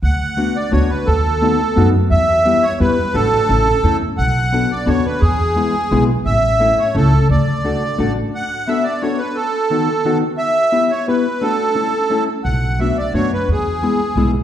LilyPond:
<<
  \new Staff \with { instrumentName = "Accordion" } { \time 3/4 \key d \major \tempo 4 = 174 fis''4. d''8 cis''8 b'8 | a'2~ a'8 r8 | e''4. cis''8 b'4 | a'2~ a'8 r8 |
fis''4. d''8 cis''8 b'8 | gis'2~ gis'8 r8 | e''4. cis''8 a'4 | d''2~ d''8 r8 |
fis''4 e''8 d''8 cis''8 b'8 | a'2~ a'8 r8 | e''4. cis''8 b'4 | a'2~ a'8 r8 |
fis''4 e''8 d''8 cis''8 b'8 | gis'2~ gis'8 r8 | }
  \new Staff \with { instrumentName = "Hollow-body jazz guitar" } { \time 3/4 \key d \major r4 <a b d' fis'>8 r8 <a b d' fis'>8 r8 | r4 <a b dis' fis'>8 r8 <a b dis' fis'>8 r8 | r4 <g b e' g'>8 r8 <g b e' g'>8 r8 | <a d' fis' a'>4 <a cis' e' a'>8 r8 <a cis' e' a'>8 r8 |
r4 <b d' fis' a'>8 r8 <b d' fis' a'>8 r8 | r4 <gis b e' gis'>8 r8 <gis b e' gis'>8 r8 | r4 <a cis' e' a'>8 r8 <a cis' e' a'>8 r8 | r4 <a d' fis' a'>8 r8 <a d' fis' a'>8 r8 |
r4 <b d' fis' a'>8 r8 <b d' fis' a'>8 r8 | r4 <dis b dis' fis' a'>8 r8 <dis b dis' fis' a'>8 r8 | r4 <b e' g' b'>8 r8 <b e' g' b'>8 r8 | <a d' fis' a'>4 <a cis' e' a'>8 r8 <a cis' e' a'>8 r8 |
r4 <a b d' fis'>8 r8 <a b d' fis'>8 r8 | r4 <gis b e' gis'>8 r8 <gis b e' gis'>8 r8 | }
  \new Staff \with { instrumentName = "Upright bass" } { \clef bass \time 3/4 \key d \major d,2 d,4 | dis,2 fis,4 | e,2 e,4 | a,,4 a,,4 e,4 |
b,,2 ees,4 | e,2 b,,4 | a,,2 cis,4 | d,2 a,,4 |
r2. | r2. | r2. | r2. |
b,,2 fis,4 | e,2 b,,4 | }
>>